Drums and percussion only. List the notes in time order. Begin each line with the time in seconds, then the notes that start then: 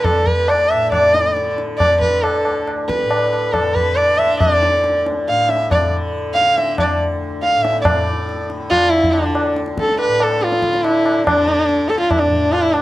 0.04 tabla na, tabla ge
0.27 tabla ge
0.48 tabla na
0.71 tabla na
0.92 tabla na, tabla ge
1.14 tabla te
1.37 tabla te
1.58 tabla te
1.80 tabla na, tabla ge
2.02 tabla ge
2.24 tabla na
2.45 tabla na
2.68 tabla na
2.89 tabla ke
3.11 tabla na
3.33 tabla na
3.54 tabla na, tabla ge
3.76 tabla ge
3.97 tabla na
4.19 tabla na
4.41 tabla na, tabla ge
4.63 tabla te
4.84 tabla te
5.06 tabla te
5.28 tabla te
5.49 tabla te
5.71 tabla na, tabla ge
6.36 tabla te
6.58 tabla te
6.78 tabla na, tabla ge
7.43 tabla te
7.65 tabla te
7.85 tabla na, tabla ge
8.07 tabla te
8.29 tabla te
8.50 tabla te
8.71 tabla na, tabla ge
8.93 tabla te
9.04 tabla ge
9.13 tabla na
9.35 tabla na
9.56 tabla te
9.66 tabla te
9.78 tabla ke
9.88 tabla te
9.99 tabla na
10.20 tabla na
10.41 tabla te
10.52 tabla te
10.62 tabla ke
10.73 tabla te
10.84 tabla na
11.06 tabla na
11.27 tabla na, tabla ge
11.48 tabla te
11.69 tabla te
11.90 tabla te
12.11 tabla na, tabla ge
12.32 tabla ge
12.53 tabla na
12.74 tabla na